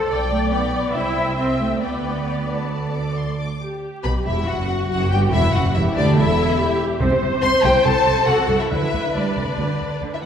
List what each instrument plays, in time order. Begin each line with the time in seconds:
0.08 double bass section B1, violin section D5 G5, viola section D5
0.30 cello section A3
0.52 cello section B3, violin section D5 G5
0.93 double bass section C2, cello section E4, violin section C5 E5 G5, viola section E5
1.36 cello section C4, violin section C5 E5 G5
1.59 cello section A3
1.81 double bass section D2, cello section B3, violin section B4 D5 G5, viola section D5
2.27 violin section G5
2.49 violin section A5
2.71 violin section A4 D5
2.94 violin section D6
3.17 violin section C6
3.39 violin section D6
3.62 viola section G4
4.04 double bass section B1, cello section B2, violin section B4 B5
4.25 double bass section E1, cello section E2, violin section E4 E5
4.47 double bass section F#1, cello section F#2, violin section F#4 F#5, viola section F#4
4.90 double bass section F#1, cello section F#2, violin section F#4 F#5
5.11 double bass section G1, cello section G2, violin section G4 G5
5.32 double bass section E1, cello section E2, violin section E4 E5
5.54 double bass section F#1, cello section F#2, violin section F#4 F#5
5.74 double bass section E1, cello section E2, violin section E4 E5, viola section G4
5.96 cello section D2, double bass section D2, violin section D4 D5
6.17 double bass section E1, cello section E2, violin section E4 E5, viola section A4
6.59 viola section G4
7.00 double bass section C2, cello section C3, viola section C5
7.11 cello section C3
7.21 double bass section C2, cello section C3
7.32 cello section C3
7.42 double bass section C2, cello section C3, violin section C5 C6
7.53 cello section C3
7.63 double bass section C2, cello section C3, violin section G4 G5
7.75 cello section C3
7.84 double bass section C2, cello section C3, violin section A4 A5
8.06 double bass section C2, cello section C3
8.17 cello section C3
8.27 double bass section C2, cello section C3, violin section F#4 F#5, viola section A4
8.39 cello section C3
8.49 double bass section C2, cello section C3
8.60 violin section E4 E5
8.69 double bass section D2, cello section D3, violin section E4 E5, viola section B4
8.82 cello section D3
8.93 double bass section D2, cello section D3
9.04 cello section D3
9.14 double bass section D2, cello section G3, violin section D4 D5
9.37 double bass section D2, cello section C3
9.58 double bass section D2, cello section D3
9.80 double bass section D2
10.01 double bass section D2, cello section D3
10.13 violin section E4 E5
10.22 violin section F#5